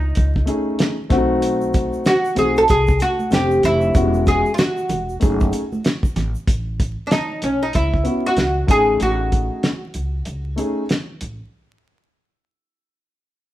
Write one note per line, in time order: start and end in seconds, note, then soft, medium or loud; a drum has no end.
0.00 0.13 C#2 medium
0.00 0.44 D#4 medium
0.15 0.45 C#2 medium
0.15 kick medium
0.15 closed hi-hat medium
0.36 kick medium
0.46 0.94 A3 medium
0.46 0.94 C#4 medium
0.46 0.94 D#4 medium
0.46 0.95 G#4 medium
0.46 closed hi-hat medium
0.79 snare loud
0.79 closed hi-hat medium
1.09 1.89 B1 medium
1.09 2.12 A3 medium
1.09 2.13 C4 medium
1.09 1.19 D4 medium
1.09 2.14 F#4 loud
1.09 kick loud
1.09 snare soft
1.09 closed hi-hat medium
1.18 2.17 D#4 medium
1.42 closed hi-hat medium
1.42 shaker medium
1.61 shaker soft
1.73 kick medium
1.73 closed hi-hat medium
1.73 shaker soft
1.93 shaker soft
2.05 2.38 F#4 loud
2.05 snare loud
2.05 closed hi-hat medium
2.05 shaker medium
2.25 shaker soft
2.35 2.65 B1 medium
2.35 2.60 A3 medium
2.35 2.61 C4 medium
2.35 2.61 D#4 medium
2.35 2.61 F#4 medium
2.35 2.58 G#4 medium
2.35 closed hi-hat medium
2.35 low conga medium
2.35 shaker soft
2.56 2.63 A4 medium
2.56 shaker soft
2.68 2.98 C2 medium
2.68 3.02 G#4 loud
2.68 kick medium
2.68 closed hi-hat medium
2.68 shaker medium
2.87 kick medium
2.87 shaker medium
3.00 3.33 F#4 medium
3.00 closed hi-hat medium
3.00 shaker soft
3.19 high conga soft
3.19 shaker soft
3.30 3.60 F1 loud
3.30 3.94 A3 medium
3.30 3.94 C4 medium
3.30 3.95 D4 medium
3.30 3.95 G4 medium
3.30 3.65 G4 medium
3.30 snare loud
3.30 closed hi-hat medium
3.30 shaker medium
3.51 shaker soft
3.63 3.92 F1 medium
3.63 4.23 E4 loud
3.63 closed hi-hat medium
3.63 low conga medium
3.63 shaker soft
3.81 shaker soft
3.94 4.42 E1 loud
3.94 4.02 G3 medium
3.94 4.42 B3 medium
3.94 4.42 C#4 medium
3.94 4.43 F#4 medium
3.94 kick loud
3.94 closed hi-hat medium
3.94 shaker medium
4.00 4.45 G#3 medium
4.14 shaker soft
4.26 4.54 G#4 medium
4.26 kick medium
4.26 closed hi-hat medium
4.26 shaker soft
4.46 shaker soft
4.54 4.58 F4 medium
4.54 shaker medium
4.58 6.12 F#4 medium
4.58 snare loud
4.58 closed hi-hat medium
4.77 shaker soft
4.89 5.18 E1 medium
4.89 closed hi-hat medium
4.89 low conga medium
4.89 shaker soft
5.09 shaker soft
5.20 5.50 F#1 medium
5.20 5.60 A3 medium
5.20 5.60 C#4 medium
5.20 5.61 D#4 medium
5.20 5.61 G#4 medium
5.20 kick medium
5.20 closed hi-hat medium
5.20 shaker medium
5.40 kick medium
5.40 shaker medium
5.53 closed hi-hat medium
5.53 shaker soft
5.72 high conga soft
5.72 shaker soft
5.84 snare loud
5.84 closed hi-hat medium
5.84 shaker medium
6.03 kick medium
6.03 shaker soft
6.16 6.33 A1 medium
6.16 snare soft
6.16 closed hi-hat medium
6.16 low conga medium
6.16 shaker soft
6.35 shaker soft
6.48 6.94 A1 medium
6.48 kick loud
6.48 closed hi-hat medium
6.80 kick medium
6.80 closed hi-hat medium
7.07 7.11 D4 medium
7.11 7.44 D#4 medium
7.11 snare loud
7.11 closed hi-hat medium
7.42 7.71 B1 medium
7.42 7.61 C#4 medium
7.42 closed hi-hat medium
7.63 7.75 D#4 medium
7.73 8.03 C#2 medium
7.73 8.22 E4 medium
7.73 kick medium
7.73 closed hi-hat medium
7.94 kick medium
8.04 8.29 B3 medium
8.04 8.29 C#4 medium
8.04 8.30 E4 medium
8.04 8.30 F#4 medium
8.04 closed hi-hat medium
8.27 8.70 F#4 medium
8.37 8.65 C#2 medium
8.37 snare medium
8.37 closed hi-hat medium
8.67 8.97 A1 medium
8.67 9.70 A3 medium
8.67 9.70 C#4 medium
8.67 9.71 D#4 medium
8.67 9.71 G#4 medium
8.67 8.99 G#4 loud
8.67 kick loud
8.67 closed hi-hat medium
9.00 9.47 A1 loud
9.00 10.87 F#4 medium
9.00 closed hi-hat medium
9.32 kick medium
9.32 closed hi-hat medium
9.63 snare loud
9.63 closed hi-hat medium
9.94 10.23 C#2 medium
9.94 closed hi-hat medium
10.25 10.55 C#2 medium
10.25 closed hi-hat medium
10.56 10.81 A3 medium
10.56 10.82 C#4 medium
10.56 10.82 D#4 medium
10.56 10.83 G#4 medium
10.56 closed hi-hat medium
10.89 snare medium
10.89 closed hi-hat medium
11.21 11.39 A1 medium
11.21 closed hi-hat medium